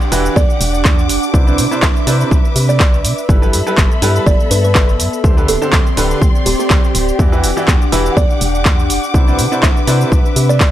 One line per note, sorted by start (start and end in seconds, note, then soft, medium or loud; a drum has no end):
0.00 4.07 D4 medium
0.00 1.32 G4 medium
0.00 2.12 G4 medium
0.00 0.17 D5 medium
0.00 1.32 F#5 medium
0.00 3.25 D6 medium
0.00 shaker soft
0.12 0.29 E1 medium
0.12 0.38 E3 loud
0.12 0.38 E4 medium
0.12 0.38 F#4 medium
0.12 0.38 G4 medium
0.12 0.38 B4 loud
0.12 2.11 F#5 medium
0.12 open hi-hat loud
0.12 shaker medium
0.26 shaker soft
0.36 0.45 E2 medium
0.36 0.50 D5 medium
0.36 kick loud
0.36 shaker soft
0.50 shaker soft
0.61 0.86 E1 loud
0.61 open hi-hat loud
0.61 shaker medium
0.74 shaker soft
0.85 1.11 E2 medium
0.85 kick loud
0.85 clap loud
0.85 shaker soft
0.99 shaker soft
1.09 1.19 E1 loud
1.09 open hi-hat loud
1.09 shaker medium
1.23 shaker soft
1.34 1.60 C2 loud
1.34 1.44 C3 medium
1.34 1.44 E4 medium
1.34 1.44 B4 medium
1.34 3.27 B4 medium
1.34 1.44 C5 medium
1.34 1.44 D5 medium
1.34 3.27 E5 medium
1.34 kick loud
1.34 shaker soft
1.47 1.63 C3 medium
1.47 1.63 E4 medium
1.47 1.63 B4 medium
1.47 1.63 C5 medium
1.47 1.63 D5 medium
1.47 shaker soft
1.57 1.67 C3 loud
1.57 3.98 B4 loud
1.57 open hi-hat loud
1.57 shaker medium
1.69 1.87 C3 medium
1.69 1.87 E4 medium
1.69 1.87 B4 medium
1.69 1.87 C5 medium
1.69 1.87 D5 medium
1.69 6.02 E5 loud
1.69 shaker soft
1.82 1.92 C2 medium
1.82 1.96 E5 medium
1.82 kick loud
1.82 clap loud
1.82 shaker soft
1.96 shaker soft
2.07 2.24 C3 medium
2.07 2.33 C3 loud
2.07 2.33 E4 medium
2.07 2.33 B4 medium
2.07 2.33 C5 medium
2.07 2.33 D5 loud
2.07 open hi-hat loud
2.07 shaker medium
2.21 shaker soft
2.31 2.40 C2 medium
2.31 kick loud
2.31 shaker soft
2.45 shaker soft
2.56 2.82 C3 loud
2.56 open hi-hat loud
2.56 shaker medium
2.69 3.05 D5 medium
2.69 shaker soft
2.80 3.06 C2 medium
2.80 kick loud
2.80 clap loud
2.80 shaker soft
2.94 shaker soft
3.05 3.14 C3 loud
3.05 open hi-hat loud
3.05 shaker medium
3.18 shaker soft
3.29 3.55 G1 loud
3.29 3.39 G3 medium
3.29 5.24 B3 medium
3.29 3.39 E4 medium
3.29 3.39 G4 medium
3.29 3.39 A4 medium
3.29 5.22 A4 medium
3.29 3.39 B4 medium
3.29 5.22 E5 medium
3.29 5.22 B5 medium
3.29 kick loud
3.29 shaker soft
3.42 3.58 G3 medium
3.42 3.58 E4 medium
3.42 3.58 G4 medium
3.42 3.58 A4 medium
3.42 6.02 A4 medium
3.42 3.58 B4 medium
3.42 shaker soft
3.53 3.62 G2 loud
3.53 open hi-hat loud
3.53 shaker medium
3.67 3.82 G3 medium
3.67 3.82 E4 medium
3.67 3.82 G4 medium
3.67 3.82 A4 medium
3.67 3.82 B4 loud
3.67 shaker soft
3.77 3.87 G1 medium
3.77 kick loud
3.77 clap loud
3.77 shaker soft
3.92 shaker soft
4.02 4.20 G2 medium
4.02 4.28 G3 loud
4.02 4.28 E4 medium
4.02 4.28 G4 medium
4.02 4.28 A4 medium
4.02 4.28 B4 loud
4.02 open hi-hat loud
4.02 shaker medium
4.16 shaker soft
4.26 4.36 G1 medium
4.26 4.40 D5 medium
4.26 kick loud
4.26 shaker soft
4.40 shaker soft
4.51 4.77 G2 loud
4.51 4.59 B4 medium
4.51 open hi-hat loud
4.51 shaker medium
4.64 4.71 B4 medium
4.64 shaker soft
4.75 5.01 G1 medium
4.75 kick loud
4.75 clap loud
4.75 shaker soft
4.89 shaker soft
5.00 5.09 G2 loud
5.00 open hi-hat loud
5.00 shaker medium
5.13 shaker soft
5.24 5.50 D2 loud
5.24 5.34 D3 medium
5.24 7.19 C4 medium
5.24 5.34 D4 medium
5.24 9.10 G4 medium
5.24 5.34 G4 medium
5.24 5.34 A4 medium
5.24 5.34 C5 medium
5.24 7.17 D5 medium
5.24 7.17 C6 medium
5.24 kick loud
5.24 shaker soft
5.37 5.53 D3 medium
5.37 5.53 D4 medium
5.37 5.53 G4 medium
5.37 5.53 A4 medium
5.37 5.53 B4 medium
5.37 shaker soft
5.48 5.58 D1 loud
5.48 9.93 G4 medium
5.48 5.62 A4 medium
5.48 open hi-hat loud
5.48 shaker medium
5.62 5.77 D3 medium
5.62 5.77 D4 medium
5.62 5.77 G4 medium
5.62 5.77 A4 medium
5.62 5.77 C5 loud
5.62 shaker soft
5.73 5.82 D2 medium
5.73 kick loud
5.73 clap loud
5.73 shaker soft
5.87 shaker soft
5.97 6.15 D1 medium
5.97 6.23 D3 loud
5.97 6.23 D4 medium
5.97 6.23 G4 medium
5.97 6.23 A4 medium
5.97 6.23 B4 loud
5.97 7.98 D5 medium
5.97 open hi-hat loud
5.97 shaker medium
6.11 shaker soft
6.22 6.31 D2 loud
6.22 kick loud
6.22 shaker soft
6.35 shaker soft
6.46 6.55 D1 medium
6.46 6.54 G4 medium
6.46 open hi-hat loud
6.46 shaker medium
6.59 6.66 G4 medium
6.59 shaker soft
6.70 6.79 D2 medium
6.70 kick loud
6.70 clap loud
6.70 shaker soft
6.84 shaker soft
6.95 7.12 D1 medium
6.95 open hi-hat loud
6.95 shaker medium
7.09 shaker soft
7.19 7.45 E2 loud
7.19 7.29 E3 medium
7.19 10.71 D4 medium
7.19 7.29 E4 medium
7.19 7.29 F#4 medium
7.19 7.29 G4 medium
7.19 7.29 D5 medium
7.19 9.12 F#5 medium
7.19 10.71 D6 medium
7.19 kick loud
7.19 shaker soft
7.32 7.48 E3 medium
7.32 7.48 E4 medium
7.32 7.48 F#4 medium
7.32 7.48 G4 medium
7.32 7.48 B4 medium
7.32 shaker soft
7.43 7.53 E1 loud
7.43 open hi-hat loud
7.43 shaker medium
7.53 7.72 E3 medium
7.53 7.72 E4 medium
7.53 7.72 F#4 medium
7.53 7.72 G4 medium
7.53 7.72 D5 medium
7.53 9.93 F#5 medium
7.53 shaker soft
7.68 7.77 E2 medium
7.68 kick loud
7.68 clap loud
7.68 shaker soft
7.82 shaker soft
7.92 8.10 E1 medium
7.92 8.19 E3 loud
7.92 8.19 E4 medium
7.92 8.19 F#4 medium
7.92 8.19 G4 medium
7.92 8.19 B4 loud
7.92 open hi-hat loud
7.92 shaker medium
8.06 shaker soft
8.17 8.26 E2 medium
8.17 8.31 D5 medium
8.17 kick loud
8.17 shaker soft
8.30 shaker soft
8.41 8.67 E1 loud
8.41 open hi-hat loud
8.41 shaker medium
8.55 shaker soft
8.65 8.91 E2 medium
8.65 kick loud
8.65 clap loud
8.65 shaker soft
8.79 shaker soft
8.90 8.99 E1 loud
8.90 open hi-hat loud
8.90 shaker medium
9.04 shaker soft
9.14 9.40 C2 loud
9.14 9.24 C3 medium
9.14 9.24 E4 medium
9.14 9.24 B4 medium
9.14 10.71 B4 medium
9.14 9.24 C5 medium
9.14 9.24 D5 medium
9.14 10.71 E5 medium
9.14 kick loud
9.14 shaker soft
9.27 9.43 C3 medium
9.27 9.43 E4 medium
9.27 9.43 B4 medium
9.27 10.71 B4 medium
9.27 9.43 C5 medium
9.27 9.43 D5 medium
9.27 shaker soft
9.39 9.48 C3 loud
9.39 open hi-hat loud
9.39 shaker medium
9.52 9.68 C3 medium
9.52 9.68 E4 medium
9.52 9.68 B4 medium
9.52 9.67 C5 medium
9.52 9.68 D5 medium
9.52 shaker soft
9.63 9.72 C2 medium
9.63 9.77 E5 medium
9.63 kick loud
9.63 clap loud
9.63 shaker soft
9.77 shaker soft
9.87 10.05 C3 medium
9.87 10.14 C3 loud
9.87 10.14 E4 medium
9.87 10.14 B4 medium
9.87 10.14 C5 medium
9.87 10.14 D5 loud
9.87 10.71 E5 medium
9.87 open hi-hat loud
9.87 shaker medium
10.01 shaker soft
10.12 10.21 C2 medium
10.12 kick loud
10.12 shaker soft
10.26 shaker soft
10.36 10.62 C3 loud
10.36 open hi-hat loud
10.36 shaker medium
10.49 10.71 D5 medium
10.49 shaker soft
10.60 10.71 C2 medium
10.60 kick loud
10.60 clap loud
10.60 shaker soft